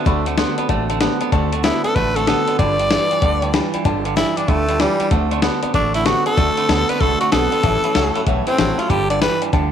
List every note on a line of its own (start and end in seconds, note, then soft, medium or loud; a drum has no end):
0.05 0.42 D2 medium
0.05 0.26 D3 medium
0.05 0.25 D3 medium
0.05 0.26 A3 medium
0.05 0.25 A3 loud
0.05 0.26 C4 medium
0.05 0.26 F#4 loud
0.05 0.24 A4 medium
0.05 0.18 D5 loud
0.05 0.18 F#5 loud
0.05 0.18 B5 loud
0.05 kick loud
0.05 closed hi-hat medium
0.25 0.37 D3 medium
0.25 0.37 A3 medium
0.25 0.37 C4 medium
0.25 0.38 F#4 medium
0.25 0.37 A4 medium
0.25 0.33 D5 medium
0.25 0.33 F#5 medium
0.25 0.33 A5 medium
0.25 closed hi-hat medium
0.38 0.58 D3 medium
0.38 0.56 D3 medium
0.38 0.58 A3 loud
0.38 0.56 B3 medium
0.38 0.58 C4 medium
0.38 0.57 F#4 medium
0.38 0.56 A4 medium
0.38 0.50 D5 loud
0.38 0.50 F#5 medium
0.38 0.50 C6 loud
0.38 snare loud
0.38 closed hi-hat medium
0.57 0.68 D3 medium
0.57 0.69 B3 medium
0.57 0.68 C4 soft
0.57 0.70 F#4 soft
0.57 0.69 A4 medium
0.57 0.65 D5 medium
0.57 0.65 F#5 medium
0.57 0.65 B5 loud
0.57 muted upright bass stroke medium
0.57 closed hi-hat medium
0.69 1.05 A1 medium
0.69 0.88 D3 medium
0.69 0.89 A3 medium
0.69 0.88 A3 medium
0.69 0.90 C4 medium
0.69 0.89 F#4 medium
0.69 0.88 A4 medium
0.69 0.81 D5 loud
0.69 0.81 F#5 loud
0.69 0.81 A5 loud
0.69 kick medium
0.69 closed hi-hat medium
0.89 0.99 D3 medium
0.89 1.00 A3 medium
0.89 1.00 C4 soft
0.89 1.00 F#4 soft
0.89 1.01 A4 medium
0.89 0.96 D5 medium
0.89 0.96 F#5 medium
0.89 0.96 A5 loud
0.89 closed hi-hat medium
1.00 1.21 D3 medium
1.00 1.19 D3 medium
1.00 1.21 A3 loud
1.00 1.19 B3 loud
1.00 1.21 C4 loud
1.00 1.21 F#4 loud
1.00 1.19 A4 loud
1.00 1.13 D5 medium
1.00 1.13 F#5 medium
1.00 1.13 A5 medium
1.00 snare loud
1.00 closed hi-hat medium
1.20 1.31 D3 medium
1.20 1.32 B3 medium
1.20 1.32 C4 medium
1.20 1.32 F#4 medium
1.20 1.32 A4 medium
1.20 1.28 D5 medium
1.20 1.28 F#5 medium
1.20 1.28 A5 medium
1.20 muted upright bass stroke medium
1.20 closed hi-hat medium
1.32 1.69 D2 loud
1.32 1.53 D3 medium
1.32 1.51 D3 medium
1.32 1.53 A3 medium
1.32 1.51 A3 loud
1.32 1.53 C4 medium
1.32 1.52 F#4 loud
1.32 1.51 A4 loud
1.32 1.45 D5 loud
1.32 1.45 F#5 loud
1.32 1.45 A5 loud
1.32 kick loud
1.32 closed hi-hat medium
1.52 1.62 D3 medium
1.52 1.63 A3 medium
1.52 1.63 C4 medium
1.52 1.64 F#4 medium
1.52 1.64 A4 medium
1.52 1.60 D5 medium
1.52 1.60 F#5 medium
1.52 1.60 A5 medium
1.52 closed hi-hat medium
1.63 1.84 D3 medium
1.63 1.82 D3 medium
1.63 1.84 A3 medium
1.63 1.82 B3 medium
1.63 1.85 C4 medium
1.63 1.83 E4 medium
1.63 1.84 F#4 medium
1.63 1.82 A4 medium
1.63 1.77 D5 medium
1.63 1.77 F#5 medium
1.63 1.77 A5 medium
1.63 snare loud
1.63 closed hi-hat medium
1.83 1.94 D3 medium
1.83 1.95 B3 medium
1.83 1.95 C4 soft
1.83 1.96 F#4 soft
1.83 1.95 A4 soft
1.83 1.96 A4 medium
1.83 1.91 D5 medium
1.83 1.92 F#5 medium
1.83 1.92 A5 medium
1.83 muted upright bass stroke medium
1.83 closed hi-hat medium
1.95 2.32 A1 medium
1.95 2.14 D3 medium
1.95 2.16 A3 medium
1.95 2.14 A3 medium
1.95 2.16 C4 medium
1.95 2.15 F#4 medium
1.95 2.13 A4 medium
1.95 2.17 B4 medium
1.95 2.08 D5 medium
1.95 2.08 F#5 medium
1.95 2.08 A5 loud
1.95 kick loud
1.95 closed hi-hat medium
2.14 2.26 D3 medium
2.14 2.27 A3 medium
2.14 2.27 C4 soft
2.14 2.27 F#4 medium
2.14 2.27 A4 soft
2.14 2.57 A4 medium
2.14 2.23 D5 medium
2.14 2.23 F#5 medium
2.14 2.23 A5 medium
2.14 closed hi-hat medium
2.27 2.47 D3 medium
2.27 2.45 D3 medium
2.27 2.48 A3 medium
2.27 2.46 B3 loud
2.27 2.48 C4 medium
2.27 2.48 F#4 medium
2.27 2.46 A4 medium
2.27 2.40 D5 medium
2.27 2.40 F#5 medium
2.27 2.40 A5 medium
2.27 snare medium
2.27 closed hi-hat medium
2.47 2.58 D3 medium
2.47 2.58 B3 medium
2.47 2.59 C4 soft
2.47 2.59 F#4 medium
2.47 2.59 A4 medium
2.47 2.55 D5 medium
2.47 2.55 F#5 medium
2.47 2.55 A5 medium
2.47 muted upright bass stroke medium
2.47 closed hi-hat medium
2.58 2.95 G1 medium
2.58 2.77 G2 medium
2.58 2.77 D3 medium
2.58 2.79 G3 medium
2.58 2.79 D4 medium
2.58 2.79 F4 medium
2.58 2.77 B4 medium
2.58 3.51 D5 loud
2.58 2.71 D5 medium
2.58 2.71 G5 medium
2.58 2.72 B5 loud
2.58 kick loud
2.58 closed hi-hat medium
2.79 2.89 G2 medium
2.79 2.90 D3 medium
2.79 2.90 D4 soft
2.79 2.90 F4 medium
2.79 2.90 B4 medium
2.79 2.86 D5 medium
2.79 2.86 G5 medium
2.79 closed hi-hat medium
2.90 3.09 G2 medium
2.90 3.09 E3 medium
2.90 3.10 G3 medium
2.90 3.11 D4 medium
2.90 3.10 F4 medium
2.90 3.09 B4 medium
2.90 3.03 D5 medium
2.90 3.03 G5 medium
2.90 3.03 B5 medium
2.90 snare loud
2.90 closed hi-hat medium
3.10 3.21 G2 medium
3.10 3.22 E3 medium
3.10 3.22 D4 medium
3.10 3.22 F4 soft
3.10 3.22 B4 medium
3.10 3.18 D5 medium
3.10 3.18 G5 medium
3.10 3.18 D6 loud
3.10 muted upright bass stroke medium
3.10 closed hi-hat medium
3.22 3.58 D2 medium
3.22 3.40 G2 medium
3.22 3.41 D3 medium
3.22 3.42 G3 medium
3.22 3.43 D4 medium
3.22 3.42 F4 medium
3.22 3.41 B4 medium
3.22 3.34 D5 loud
3.22 3.34 G5 loud
3.22 3.34 D6 loud
3.22 kick loud
3.22 closed hi-hat medium
3.42 3.53 G2 medium
3.42 3.53 D3 medium
3.42 3.53 D4 soft
3.42 3.53 F4 soft
3.42 3.54 B4 medium
3.42 3.49 D5 medium
3.42 3.49 G5 medium
3.42 3.49 D6 loud
3.42 closed hi-hat medium
3.53 3.72 G2 medium
3.53 3.72 E3 medium
3.53 3.73 G3 loud
3.53 3.74 D4 medium
3.53 3.73 F4 loud
3.53 3.71 B4 loud
3.53 3.66 D5 medium
3.53 3.66 G5 medium
3.53 3.66 B5 loud
3.53 snare loud
3.53 closed hi-hat medium
3.73 3.84 G2 medium
3.73 3.84 E3 medium
3.73 3.84 D4 medium
3.73 3.85 F4 medium
3.73 3.85 B4 medium
3.73 3.81 D5 medium
3.73 3.81 G5 medium
3.73 3.81 B5 medium
3.73 muted upright bass stroke medium
3.73 closed hi-hat medium
3.85 4.21 G1 medium
3.85 4.03 G2 medium
3.85 4.04 D3 loud
3.85 4.05 G3 medium
3.85 4.05 D4 medium
3.85 4.05 F4 medium
3.85 4.03 B4 medium
3.85 3.97 D5 loud
3.85 3.97 G5 loud
3.85 3.98 A5 loud
3.85 kick loud
3.85 closed hi-hat medium
4.04 4.15 G2 medium
4.04 4.16 D3 medium
4.04 4.15 D4 soft
4.04 4.16 F4 medium
4.04 4.16 B4 medium
4.04 4.12 D5 medium
4.04 4.12 G5 medium
4.04 4.12 D6 medium
4.04 closed hi-hat medium
4.16 4.35 G2 medium
4.16 4.35 E3 medium
4.16 4.36 G3 medium
4.16 4.37 D4 medium
4.16 4.38 E4 medium
4.16 4.36 F4 medium
4.16 4.35 B4 medium
4.16 4.29 D5 medium
4.16 4.29 G5 medium
4.16 4.29 B5 medium
4.16 snare loud
4.16 closed hi-hat medium
4.36 4.47 G2 medium
4.36 4.47 E3 medium
4.36 4.50 D4 medium
4.36 4.47 D4 soft
4.36 4.48 F4 soft
4.36 4.48 B4 soft
4.36 4.44 D5 medium
4.36 4.44 G5 medium
4.36 4.44 D6 medium
4.36 muted upright bass stroke medium
4.36 closed hi-hat medium
4.47 4.85 D2 medium
4.47 4.66 G2 medium
4.47 4.66 D3 medium
4.47 4.68 G3 medium
4.47 4.82 A3 loud
4.47 4.68 D4 medium
4.47 4.68 F4 medium
4.47 4.67 B4 medium
4.47 4.61 D5 medium
4.47 4.61 G5 medium
4.47 4.61 B5 loud
4.47 kick medium
4.47 closed hi-hat medium
4.68 4.78 G2 medium
4.68 4.79 D3 medium
4.68 4.79 D4 soft
4.68 4.80 F4 soft
4.68 4.80 B4 soft
4.68 4.76 D5 medium
4.68 4.76 G5 medium
4.68 4.76 B5 medium
4.68 closed hi-hat medium
4.79 4.98 G2 medium
4.79 4.98 E3 loud
4.79 5.00 G3 medium
4.79 5.11 G3 loud
4.79 5.00 D4 medium
4.79 5.00 F4 medium
4.79 4.99 B4 medium
4.79 4.92 D5 medium
4.79 4.92 G5 medium
4.79 4.92 D6 medium
4.79 snare medium
4.79 closed hi-hat medium
4.99 5.10 G2 medium
4.99 5.10 E3 medium
4.99 5.12 D4 medium
4.99 5.12 F4 medium
4.99 5.11 B4 medium
4.99 5.07 D5 medium
4.99 5.07 G5 medium
4.99 5.07 B5 medium
4.99 muted upright bass stroke medium
4.99 closed hi-hat medium
5.11 5.48 D2 medium
5.11 5.29 D3 medium
5.11 5.32 D3 medium
5.11 5.30 A3 medium
5.11 5.32 A3 medium
5.11 5.32 C4 medium
5.11 5.32 F#4 medium
5.11 5.30 A4 medium
5.11 5.24 D5 loud
5.11 5.24 F#5 medium
5.11 5.24 A5 loud
5.11 kick loud
5.11 closed hi-hat medium
5.31 5.41 D3 medium
5.31 5.42 A3 medium
5.31 5.42 C4 soft
5.31 5.43 F#4 medium
5.31 5.43 A4 medium
5.31 5.39 D5 medium
5.31 5.39 F#5 medium
5.31 5.39 C6 medium
5.31 closed hi-hat medium
5.42 5.61 D3 medium
5.42 5.63 D3 medium
5.42 5.63 A3 medium
5.42 5.61 B3 medium
5.42 5.63 C4 medium
5.42 5.63 F#4 medium
5.42 5.62 A4 medium
5.42 5.55 D5 medium
5.42 5.55 F#5 medium
5.42 5.55 B5 loud
5.42 snare loud
5.42 closed hi-hat medium
5.62 5.72 D3 medium
5.62 5.73 B3 medium
5.62 5.74 C4 medium
5.62 5.75 F#4 soft
5.62 5.74 A4 medium
5.62 5.70 D5 loud
5.62 5.70 F#5 medium
5.62 5.70 A5 loud
5.62 muted upright bass stroke medium
5.62 closed hi-hat medium
5.74 6.10 A1 medium
5.74 5.92 D3 medium
5.74 5.94 A3 medium
5.74 5.92 A3 loud
5.74 5.95 C4 medium
5.74 5.94 D4 medium
5.74 5.95 F#4 medium
5.74 5.87 D5 medium
5.74 5.87 F#5 medium
5.74 5.87 A5 loud
5.74 kick loud
5.74 closed hi-hat medium
5.94 6.04 D3 medium
5.94 6.05 A3 medium
5.94 6.06 C4 soft
5.94 6.07 E4 medium
5.94 6.06 F#4 soft
5.94 6.06 A4 soft
5.94 6.02 D5 medium
5.94 6.02 F#5 medium
5.94 6.02 B5 medium
5.94 closed hi-hat medium
6.05 6.24 D3 medium
6.05 6.26 D3 medium
6.05 6.26 A3 medium
6.05 6.24 B3 medium
6.05 6.27 C4 medium
6.05 6.25 F#4 medium
6.05 6.26 F#4 medium
6.05 6.24 A4 loud
6.05 6.18 D5 medium
6.05 6.18 A5 medium
6.05 snare loud
6.05 closed hi-hat medium
6.26 6.36 D3 medium
6.26 6.36 B3 medium
6.26 6.37 C4 soft
6.26 6.37 F#4 medium
6.26 6.37 A4 medium
6.26 6.91 A4 loud
6.26 6.33 D5 medium
6.26 6.33 F#5 medium
6.26 6.33 A5 medium
6.26 muted upright bass stroke medium
6.26 closed hi-hat medium
6.37 6.52 D2 loud
6.37 6.58 D3 medium
6.37 6.56 D3 medium
6.37 6.58 A3 medium
6.37 6.56 A3 medium
6.37 6.58 C4 medium
6.37 6.57 F#4 medium
6.37 6.56 A4 medium
6.37 6.50 D5 medium
6.37 6.50 F#5 medium
6.37 6.50 A5 loud
6.37 kick loud
6.37 closed hi-hat loud
6.57 6.68 D3 medium
6.57 6.68 A3 medium
6.57 6.69 C4 soft
6.57 6.69 F#4 medium
6.57 6.69 A4 medium
6.57 6.64 D5 medium
6.57 6.64 F#5 medium
6.57 6.64 B5 medium
6.57 muted upright bass stroke medium
6.57 closed hi-hat medium
6.69 6.86 D2 medium
6.69 6.87 D3 medium
6.69 6.89 D3 medium
6.69 6.89 A3 medium
6.69 6.87 B3 medium
6.69 6.90 C4 medium
6.69 6.90 F#4 medium
6.69 6.88 A4 medium
6.69 6.81 D5 medium
6.69 6.81 F#5 medium
6.69 6.81 A5 loud
6.69 snare loud
6.69 closed hi-hat medium
6.89 7.00 D3 medium
6.89 7.00 B3 medium
6.89 7.01 C4 soft
6.89 7.01 F#4 soft
6.89 7.01 A4 soft
6.89 7.02 B4 medium
6.89 6.96 D5 medium
6.89 6.96 F#5 medium
6.89 6.96 C6 medium
6.89 muted upright bass stroke medium
6.89 closed hi-hat medium
7.00 7.18 C2 medium
7.00 7.19 D3 medium
7.00 7.21 A3 medium
7.00 7.19 A3 medium
7.00 7.21 C4 medium
7.00 7.21 F#4 medium
7.00 7.20 A4 loud
7.00 7.19 A4 medium
7.00 7.13 D5 medium
7.00 7.13 F#5 medium
7.00 7.13 B5 medium
7.00 kick medium
7.00 closed hi-hat medium
7.20 7.31 D3 medium
7.20 7.31 A3 medium
7.20 7.32 C4 soft
7.20 7.31 F#4 medium
7.20 7.32 F#4 soft
7.20 7.32 A4 medium
7.20 7.27 D5 medium
7.20 7.27 F#5 medium
7.20 7.27 A5 medium
7.20 muted upright bass stroke medium
7.20 closed hi-hat medium
7.32 7.50 B1 medium
7.32 7.52 D3 medium
7.32 7.50 D3 medium
7.32 7.53 A3 medium
7.32 7.51 B3 loud
7.32 7.53 C4 medium
7.32 7.52 F#4 medium
7.32 8.24 A4 loud
7.32 7.50 A4 medium
7.32 7.44 D5 medium
7.32 7.44 F#5 medium
7.32 7.44 A5 medium
7.32 snare loud
7.32 closed hi-hat medium
7.51 7.63 D3 medium
7.51 7.63 B3 medium
7.51 7.64 C4 soft
7.51 7.64 F#4 medium
7.51 7.63 A4 medium
7.51 7.59 D5 medium
7.51 7.59 F#5 medium
7.51 7.59 C6 medium
7.51 muted upright bass stroke medium
7.51 closed hi-hat medium
7.63 7.78 A1 medium
7.63 7.82 A2 medium
7.63 7.84 A2 medium
7.63 7.84 E3 medium
7.63 7.82 E3 medium
7.63 7.84 G3 medium
7.63 7.84 C#4 medium
7.63 7.83 G4 medium
7.63 7.82 A4 medium
7.63 7.76 C#5 medium
7.63 7.76 E5 medium
7.63 7.76 A5 loud
7.63 kick loud
7.63 closed hi-hat medium
7.83 7.94 A2 medium
7.83 7.94 E3 medium
7.83 7.95 G3 soft
7.83 7.96 C#4 medium
7.83 7.96 G4 medium
7.83 7.95 A4 medium
7.83 7.91 C#5 medium
7.83 7.91 E5 medium
7.83 7.91 B5 medium
7.83 muted upright bass stroke medium
7.83 closed hi-hat medium
7.95 8.13 C#2 medium
7.95 8.13 A2 medium
7.95 8.16 A2 medium
7.95 8.16 E3 medium
7.95 8.14 F#3 medium
7.95 8.16 G3 medium
7.95 8.16 C#4 medium
7.95 8.15 G4 medium
7.95 8.14 A4 medium
7.95 8.07 C#5 medium
7.95 8.07 E5 medium
7.95 8.07 F#5 loud
7.95 snare loud
7.95 closed hi-hat medium
8.15 8.26 A2 medium
8.15 8.26 F#3 medium
8.15 8.25 G3 medium
8.15 8.26 C#4 soft
8.15 8.27 G4 medium
8.15 8.27 A4 medium
8.15 8.22 C#5 medium
8.15 8.22 E5 medium
8.15 8.22 B5 loud
8.15 muted upright bass stroke medium
8.15 closed hi-hat medium
8.26 8.44 B1 medium
8.26 8.45 A2 medium
8.26 8.45 E3 medium
8.26 8.47 G3 medium
8.26 8.47 C#4 medium
8.26 8.47 G4 medium
8.26 8.46 A4 medium
8.26 8.39 C#5 loud
8.26 8.39 E5 loud
8.26 8.39 F#5 loud
8.26 kick medium
8.26 closed hi-hat medium
8.47 8.57 A2 medium
8.47 8.57 E3 medium
8.47 8.58 G3 soft
8.47 8.80 C4 medium
8.47 8.58 C#4 soft
8.47 8.59 G4 medium
8.47 8.59 A4 medium
8.47 8.54 C#5 medium
8.47 8.54 E5 medium
8.47 8.54 B5 medium
8.47 muted upright bass stroke medium
8.47 closed hi-hat medium
8.58 8.76 A1 medium
8.58 8.79 A2 medium
8.58 8.77 A2 medium
8.58 8.79 E3 medium
8.58 8.77 F#3 loud
8.58 8.79 G3 medium
8.58 8.79 C#4 medium
8.58 8.78 G4 medium
8.58 8.77 A4 medium
8.58 8.70 C#5 medium
8.58 8.71 E5 medium
8.58 8.71 G5 medium
8.58 snare loud
8.58 closed hi-hat medium
8.78 8.89 A2 medium
8.78 8.89 F#3 medium
8.78 8.88 G3 soft
8.78 8.89 C#4 soft
8.78 8.91 F4 medium
8.78 8.90 G4 medium
8.78 8.90 A4 medium
8.78 8.85 C#5 medium
8.78 8.85 E5 medium
8.78 8.86 A5 medium
8.78 muted upright bass stroke medium
8.78 closed hi-hat medium
8.89 9.26 G1 medium
8.89 9.08 G2 medium
8.89 9.08 D3 loud
8.89 9.10 G3 medium
8.89 9.10 D4 medium
8.89 9.09 F4 medium
8.89 9.09 G4 medium
8.89 9.08 B4 loud
8.89 9.02 D5 loud
8.89 9.02 G5 medium
8.89 9.02 B5 loud
8.89 kick loud
8.89 closed hi-hat medium
9.09 9.20 G2 medium
9.09 9.21 D3 medium
9.09 9.20 D4 soft
9.09 9.21 F4 soft
9.09 9.21 B4 soft
9.09 9.20 D5 medium
9.09 9.17 D5 medium
9.09 9.17 G5 medium
9.09 9.17 A5 medium
9.09 closed hi-hat medium
9.21 9.40 G2 medium
9.21 9.40 E3 loud
9.21 9.41 G3 medium
9.21 9.42 D4 medium
9.21 9.41 F4 medium
9.21 9.41 B4 loud
9.21 9.40 B4 medium
9.21 9.34 G5 medium
9.21 snare loud
9.21 closed hi-hat medium
9.41 9.52 G2 medium
9.41 9.52 E3 medium
9.41 9.52 D4 soft
9.41 9.53 F4 soft
9.41 9.53 B4 medium
9.41 9.49 D5 medium
9.41 9.49 G5 medium
9.41 9.49 B5 medium
9.41 muted upright bass stroke medium
9.41 closed hi-hat medium
9.52 9.72 D2 medium
9.52 9.71 G2 medium
9.52 9.71 D3 medium
9.52 9.72 G3 medium
9.52 9.72 D4 medium
9.52 9.72 F4 medium
9.52 9.72 B4 medium
9.52 9.65 D5 loud
9.52 9.65 G5 loud
9.52 9.65 A5 loud
9.52 kick loud
9.52 closed hi-hat medium